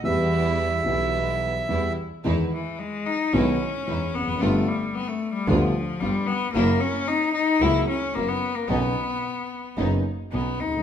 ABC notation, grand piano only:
X:1
M:4/4
L:1/16
Q:1/4=111
K:Em
V:1 name="Grand piano" clef=bass
[E,,E,G,B,G]6 [B,,,B,,E,G,B,G]6 [E,,E,G,B,G]2 z2 | [K:F#dor] [E,,D,E,G,B,E]2 z6 [B,,,B,,D,G,B,E]2 z2 [E,,E,]2 z/2 E,,/2 =F,,/2 ^F,,/2 | [=G,,,=G,,=D,=G,B,=F]2 z6 [=D,,D,G,B,F]2 z2 [G,,,G,,]2 z2 | [F,,C,F,^A,E]2 z6 [C,,C,F,A,E]2 z2 [F,,F,]2 z2 |
[B,,,B,,C,F,B,D]2 z6 [F,,,F,,C,F,B,D]2 z2 [B,,,B,,]2 z/2 C,,/2 =D,,/2 z/2 |]